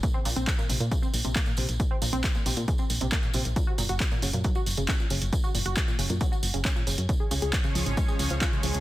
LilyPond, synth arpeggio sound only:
\new Staff \with { instrumentName = "Synth arpeggio sound" } { \clef bass \time 4/4 \key ges \lydian \tempo 4 = 136 bes,16 c'16 bes,16 c'16 r16 bes,16 c16 bes,16 des16 c'16 r16 c16 bes16 bes,16 c16 r16 | bes,16 c'16 bes,16 c'16 r16 bes,16 c16 bes,16 des16 c'16 r16 c16 bes16 bes,16 c16 r16 | bes,16 ges'16 bes,16 ges'16 r16 bes,16 des16 bes,16 ges16 ges'16 r16 des16 des'16 bes,16 des16 r16 | bes,16 ges'16 bes,16 ges'16 r16 bes,16 des16 bes,16 ges16 ges'16 r16 des16 des'16 bes,16 des16 r16 |
des16 aes'16 des16 aes'16 r16 des16 f16 des16 aes16 aes'16 r16 f16 f'16 des16 f16 r16 | }